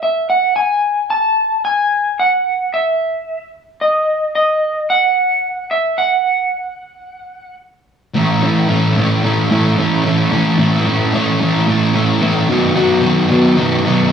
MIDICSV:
0, 0, Header, 1, 3, 480
1, 0, Start_track
1, 0, Tempo, 542005
1, 1456, Time_signature, 4, 2, 24, 8
1, 12506, End_track
2, 0, Start_track
2, 0, Title_t, "Electric slide guitar"
2, 0, Program_c, 0, 29
2, 24, Note_on_c, 0, 76, 73
2, 243, Note_off_c, 0, 76, 0
2, 262, Note_on_c, 0, 78, 70
2, 482, Note_off_c, 0, 78, 0
2, 495, Note_on_c, 0, 80, 96
2, 974, Note_off_c, 0, 80, 0
2, 977, Note_on_c, 0, 81, 104
2, 1456, Note_off_c, 0, 81, 0
2, 1459, Note_on_c, 0, 80, 91
2, 1944, Note_on_c, 0, 78, 75
2, 1952, Note_off_c, 0, 80, 0
2, 2424, Note_on_c, 0, 76, 76
2, 2434, Note_off_c, 0, 78, 0
2, 3104, Note_off_c, 0, 76, 0
2, 3378, Note_on_c, 0, 75, 79
2, 3823, Note_off_c, 0, 75, 0
2, 3856, Note_on_c, 0, 75, 75
2, 4338, Note_on_c, 0, 78, 104
2, 4350, Note_off_c, 0, 75, 0
2, 5056, Note_on_c, 0, 76, 89
2, 5078, Note_off_c, 0, 78, 0
2, 5295, Note_on_c, 0, 78, 94
2, 5302, Note_off_c, 0, 76, 0
2, 6699, Note_off_c, 0, 78, 0
2, 12506, End_track
3, 0, Start_track
3, 0, Title_t, "Distorted electric guitar"
3, 0, Program_c, 1, 30
3, 7208, Note_on_c, 1, 45, 78
3, 7210, Note_on_c, 1, 52, 72
3, 7216, Note_on_c, 1, 57, 79
3, 7218, Note_on_c, 1, 61, 86
3, 7225, Note_on_c, 1, 64, 88
3, 7447, Note_off_c, 1, 45, 0
3, 7451, Note_on_c, 1, 45, 66
3, 7454, Note_off_c, 1, 52, 0
3, 7456, Note_off_c, 1, 57, 0
3, 7457, Note_on_c, 1, 52, 79
3, 7460, Note_on_c, 1, 57, 73
3, 7462, Note_off_c, 1, 61, 0
3, 7465, Note_on_c, 1, 61, 83
3, 7467, Note_off_c, 1, 64, 0
3, 7470, Note_on_c, 1, 64, 77
3, 7683, Note_off_c, 1, 45, 0
3, 7687, Note_on_c, 1, 45, 68
3, 7689, Note_off_c, 1, 52, 0
3, 7692, Note_off_c, 1, 57, 0
3, 7693, Note_on_c, 1, 52, 74
3, 7696, Note_on_c, 1, 57, 72
3, 7699, Note_off_c, 1, 61, 0
3, 7701, Note_off_c, 1, 64, 0
3, 7703, Note_on_c, 1, 61, 71
3, 7705, Note_on_c, 1, 64, 80
3, 7925, Note_off_c, 1, 45, 0
3, 7929, Note_on_c, 1, 45, 62
3, 7930, Note_off_c, 1, 52, 0
3, 7933, Note_on_c, 1, 52, 70
3, 7937, Note_off_c, 1, 57, 0
3, 7938, Note_off_c, 1, 61, 0
3, 7941, Note_on_c, 1, 57, 66
3, 7942, Note_off_c, 1, 64, 0
3, 7942, Note_on_c, 1, 61, 81
3, 7946, Note_on_c, 1, 64, 80
3, 8159, Note_off_c, 1, 45, 0
3, 8162, Note_off_c, 1, 52, 0
3, 8169, Note_off_c, 1, 57, 0
3, 8170, Note_on_c, 1, 45, 77
3, 8173, Note_on_c, 1, 52, 83
3, 8178, Note_off_c, 1, 64, 0
3, 8179, Note_on_c, 1, 57, 81
3, 8180, Note_off_c, 1, 61, 0
3, 8184, Note_on_c, 1, 61, 81
3, 8189, Note_on_c, 1, 64, 88
3, 8401, Note_off_c, 1, 45, 0
3, 8408, Note_off_c, 1, 52, 0
3, 8410, Note_off_c, 1, 57, 0
3, 8412, Note_on_c, 1, 45, 67
3, 8418, Note_on_c, 1, 52, 66
3, 8419, Note_off_c, 1, 64, 0
3, 8421, Note_on_c, 1, 57, 71
3, 8422, Note_off_c, 1, 61, 0
3, 8425, Note_on_c, 1, 61, 67
3, 8430, Note_on_c, 1, 64, 77
3, 8640, Note_off_c, 1, 45, 0
3, 8647, Note_off_c, 1, 52, 0
3, 8651, Note_off_c, 1, 57, 0
3, 8651, Note_on_c, 1, 45, 80
3, 8658, Note_off_c, 1, 64, 0
3, 8658, Note_on_c, 1, 52, 77
3, 8662, Note_on_c, 1, 57, 77
3, 8663, Note_off_c, 1, 61, 0
3, 8666, Note_on_c, 1, 61, 90
3, 8668, Note_on_c, 1, 64, 85
3, 8882, Note_off_c, 1, 45, 0
3, 8890, Note_off_c, 1, 52, 0
3, 8892, Note_off_c, 1, 57, 0
3, 8893, Note_on_c, 1, 45, 73
3, 8900, Note_on_c, 1, 52, 77
3, 8902, Note_off_c, 1, 64, 0
3, 8903, Note_on_c, 1, 57, 80
3, 8905, Note_off_c, 1, 61, 0
3, 8908, Note_on_c, 1, 61, 82
3, 8913, Note_on_c, 1, 64, 73
3, 9120, Note_off_c, 1, 45, 0
3, 9124, Note_off_c, 1, 52, 0
3, 9130, Note_on_c, 1, 45, 72
3, 9131, Note_off_c, 1, 57, 0
3, 9135, Note_on_c, 1, 52, 81
3, 9138, Note_off_c, 1, 64, 0
3, 9139, Note_off_c, 1, 61, 0
3, 9142, Note_on_c, 1, 57, 81
3, 9143, Note_on_c, 1, 61, 88
3, 9148, Note_on_c, 1, 64, 93
3, 9358, Note_off_c, 1, 45, 0
3, 9361, Note_off_c, 1, 52, 0
3, 9367, Note_off_c, 1, 57, 0
3, 9369, Note_on_c, 1, 45, 80
3, 9372, Note_on_c, 1, 52, 74
3, 9374, Note_off_c, 1, 64, 0
3, 9375, Note_off_c, 1, 61, 0
3, 9377, Note_on_c, 1, 57, 80
3, 9379, Note_on_c, 1, 61, 80
3, 9385, Note_on_c, 1, 64, 92
3, 9601, Note_off_c, 1, 45, 0
3, 9606, Note_off_c, 1, 52, 0
3, 9610, Note_off_c, 1, 57, 0
3, 9612, Note_on_c, 1, 45, 71
3, 9617, Note_on_c, 1, 52, 67
3, 9620, Note_off_c, 1, 64, 0
3, 9621, Note_on_c, 1, 57, 78
3, 9624, Note_off_c, 1, 61, 0
3, 9627, Note_on_c, 1, 61, 86
3, 9630, Note_on_c, 1, 64, 84
3, 9846, Note_off_c, 1, 45, 0
3, 9851, Note_off_c, 1, 52, 0
3, 9854, Note_off_c, 1, 57, 0
3, 9856, Note_on_c, 1, 45, 64
3, 9860, Note_off_c, 1, 64, 0
3, 9862, Note_on_c, 1, 52, 76
3, 9865, Note_on_c, 1, 57, 70
3, 9866, Note_off_c, 1, 61, 0
3, 9870, Note_on_c, 1, 61, 75
3, 9871, Note_on_c, 1, 64, 83
3, 10085, Note_off_c, 1, 45, 0
3, 10089, Note_off_c, 1, 52, 0
3, 10095, Note_off_c, 1, 57, 0
3, 10096, Note_on_c, 1, 45, 87
3, 10100, Note_on_c, 1, 52, 97
3, 10101, Note_off_c, 1, 64, 0
3, 10103, Note_off_c, 1, 61, 0
3, 10106, Note_on_c, 1, 57, 91
3, 10107, Note_on_c, 1, 61, 84
3, 10111, Note_on_c, 1, 64, 91
3, 10324, Note_off_c, 1, 45, 0
3, 10329, Note_off_c, 1, 52, 0
3, 10332, Note_off_c, 1, 57, 0
3, 10335, Note_on_c, 1, 45, 71
3, 10339, Note_on_c, 1, 52, 72
3, 10341, Note_off_c, 1, 64, 0
3, 10343, Note_on_c, 1, 57, 71
3, 10344, Note_off_c, 1, 61, 0
3, 10348, Note_on_c, 1, 61, 77
3, 10352, Note_on_c, 1, 64, 84
3, 10566, Note_off_c, 1, 45, 0
3, 10571, Note_off_c, 1, 52, 0
3, 10576, Note_off_c, 1, 57, 0
3, 10577, Note_on_c, 1, 45, 74
3, 10582, Note_on_c, 1, 52, 77
3, 10586, Note_off_c, 1, 64, 0
3, 10586, Note_on_c, 1, 57, 97
3, 10587, Note_off_c, 1, 61, 0
3, 10590, Note_on_c, 1, 61, 100
3, 10596, Note_on_c, 1, 64, 79
3, 10805, Note_off_c, 1, 45, 0
3, 10811, Note_off_c, 1, 52, 0
3, 10815, Note_off_c, 1, 57, 0
3, 10815, Note_on_c, 1, 45, 72
3, 10821, Note_off_c, 1, 64, 0
3, 10822, Note_on_c, 1, 52, 73
3, 10825, Note_off_c, 1, 61, 0
3, 10826, Note_on_c, 1, 57, 77
3, 10829, Note_on_c, 1, 61, 72
3, 10832, Note_on_c, 1, 64, 87
3, 11043, Note_off_c, 1, 45, 0
3, 11046, Note_off_c, 1, 52, 0
3, 11049, Note_off_c, 1, 57, 0
3, 11052, Note_off_c, 1, 64, 0
3, 11053, Note_on_c, 1, 47, 83
3, 11059, Note_on_c, 1, 51, 86
3, 11062, Note_on_c, 1, 54, 94
3, 11063, Note_off_c, 1, 61, 0
3, 11067, Note_on_c, 1, 59, 90
3, 11071, Note_on_c, 1, 66, 89
3, 11282, Note_off_c, 1, 47, 0
3, 11286, Note_off_c, 1, 51, 0
3, 11292, Note_on_c, 1, 47, 88
3, 11294, Note_off_c, 1, 59, 0
3, 11297, Note_on_c, 1, 51, 87
3, 11300, Note_off_c, 1, 54, 0
3, 11304, Note_off_c, 1, 66, 0
3, 11304, Note_on_c, 1, 54, 88
3, 11305, Note_on_c, 1, 59, 86
3, 11308, Note_on_c, 1, 66, 96
3, 11516, Note_off_c, 1, 47, 0
3, 11523, Note_off_c, 1, 51, 0
3, 11527, Note_on_c, 1, 47, 82
3, 11531, Note_off_c, 1, 59, 0
3, 11533, Note_on_c, 1, 51, 81
3, 11535, Note_off_c, 1, 54, 0
3, 11539, Note_on_c, 1, 54, 84
3, 11542, Note_on_c, 1, 59, 72
3, 11544, Note_off_c, 1, 66, 0
3, 11548, Note_on_c, 1, 66, 89
3, 11765, Note_off_c, 1, 47, 0
3, 11768, Note_off_c, 1, 51, 0
3, 11775, Note_on_c, 1, 47, 78
3, 11776, Note_off_c, 1, 59, 0
3, 11779, Note_on_c, 1, 51, 74
3, 11780, Note_off_c, 1, 54, 0
3, 11784, Note_on_c, 1, 54, 80
3, 11786, Note_on_c, 1, 59, 81
3, 11790, Note_off_c, 1, 66, 0
3, 11793, Note_on_c, 1, 66, 80
3, 12000, Note_off_c, 1, 47, 0
3, 12004, Note_off_c, 1, 51, 0
3, 12009, Note_off_c, 1, 54, 0
3, 12011, Note_on_c, 1, 47, 85
3, 12013, Note_off_c, 1, 59, 0
3, 12015, Note_off_c, 1, 66, 0
3, 12015, Note_on_c, 1, 51, 96
3, 12019, Note_on_c, 1, 54, 92
3, 12023, Note_on_c, 1, 59, 93
3, 12026, Note_on_c, 1, 66, 95
3, 12248, Note_off_c, 1, 47, 0
3, 12251, Note_off_c, 1, 51, 0
3, 12257, Note_off_c, 1, 54, 0
3, 12259, Note_on_c, 1, 47, 78
3, 12261, Note_off_c, 1, 59, 0
3, 12261, Note_on_c, 1, 51, 77
3, 12266, Note_off_c, 1, 66, 0
3, 12268, Note_on_c, 1, 54, 73
3, 12271, Note_on_c, 1, 59, 76
3, 12276, Note_on_c, 1, 66, 82
3, 12483, Note_off_c, 1, 47, 0
3, 12487, Note_off_c, 1, 51, 0
3, 12492, Note_off_c, 1, 54, 0
3, 12495, Note_off_c, 1, 59, 0
3, 12501, Note_off_c, 1, 66, 0
3, 12506, End_track
0, 0, End_of_file